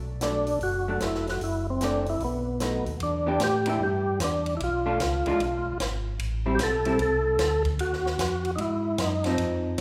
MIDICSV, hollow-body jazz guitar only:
0, 0, Header, 1, 2, 480
1, 0, Start_track
1, 0, Tempo, 398936
1, 1700, Time_signature, 4, 2, 24, 8
1, 11800, End_track
2, 0, Start_track
2, 0, Title_t, "Hollow-body jazz guitar"
2, 0, Program_c, 0, 26
2, 265, Note_on_c, 0, 54, 38
2, 274, Note_on_c, 0, 57, 44
2, 284, Note_on_c, 0, 62, 49
2, 542, Note_off_c, 0, 54, 0
2, 546, Note_off_c, 0, 57, 0
2, 551, Note_off_c, 0, 62, 0
2, 1061, Note_on_c, 0, 54, 47
2, 1063, Note_on_c, 0, 57, 52
2, 1075, Note_on_c, 0, 62, 51
2, 1672, Note_off_c, 0, 54, 0
2, 1673, Note_off_c, 0, 57, 0
2, 1678, Note_off_c, 0, 62, 0
2, 2184, Note_on_c, 0, 52, 48
2, 2199, Note_on_c, 0, 57, 48
2, 2200, Note_on_c, 0, 60, 50
2, 2462, Note_off_c, 0, 52, 0
2, 2470, Note_off_c, 0, 57, 0
2, 2471, Note_off_c, 0, 60, 0
2, 3140, Note_on_c, 0, 54, 39
2, 3147, Note_on_c, 0, 57, 42
2, 3154, Note_on_c, 0, 63, 44
2, 3421, Note_off_c, 0, 54, 0
2, 3424, Note_off_c, 0, 57, 0
2, 3428, Note_off_c, 0, 63, 0
2, 3926, Note_on_c, 0, 52, 58
2, 3933, Note_on_c, 0, 59, 58
2, 3944, Note_on_c, 0, 62, 60
2, 3948, Note_on_c, 0, 67, 62
2, 4081, Note_off_c, 0, 52, 0
2, 4085, Note_off_c, 0, 59, 0
2, 4091, Note_off_c, 0, 62, 0
2, 4092, Note_off_c, 0, 67, 0
2, 4408, Note_on_c, 0, 52, 58
2, 4415, Note_on_c, 0, 59, 65
2, 4422, Note_on_c, 0, 62, 62
2, 4423, Note_on_c, 0, 67, 68
2, 4563, Note_off_c, 0, 52, 0
2, 4566, Note_off_c, 0, 59, 0
2, 4569, Note_off_c, 0, 62, 0
2, 4570, Note_off_c, 0, 67, 0
2, 5846, Note_on_c, 0, 57, 64
2, 5851, Note_on_c, 0, 62, 70
2, 5851, Note_on_c, 0, 65, 66
2, 6001, Note_off_c, 0, 57, 0
2, 6004, Note_off_c, 0, 62, 0
2, 6004, Note_off_c, 0, 65, 0
2, 6335, Note_on_c, 0, 52, 58
2, 6342, Note_on_c, 0, 56, 65
2, 6348, Note_on_c, 0, 62, 69
2, 6351, Note_on_c, 0, 65, 76
2, 6486, Note_off_c, 0, 52, 0
2, 6489, Note_off_c, 0, 56, 0
2, 6492, Note_off_c, 0, 62, 0
2, 6494, Note_off_c, 0, 65, 0
2, 7771, Note_on_c, 0, 55, 73
2, 7775, Note_on_c, 0, 60, 63
2, 7780, Note_on_c, 0, 64, 68
2, 7924, Note_off_c, 0, 55, 0
2, 7926, Note_off_c, 0, 60, 0
2, 7928, Note_off_c, 0, 64, 0
2, 8253, Note_on_c, 0, 55, 59
2, 8255, Note_on_c, 0, 60, 67
2, 8259, Note_on_c, 0, 64, 80
2, 8405, Note_off_c, 0, 55, 0
2, 8406, Note_off_c, 0, 60, 0
2, 8408, Note_off_c, 0, 64, 0
2, 11139, Note_on_c, 0, 53, 55
2, 11152, Note_on_c, 0, 60, 61
2, 11158, Note_on_c, 0, 63, 70
2, 11751, Note_off_c, 0, 53, 0
2, 11758, Note_off_c, 0, 60, 0
2, 11760, Note_off_c, 0, 63, 0
2, 11800, End_track
0, 0, End_of_file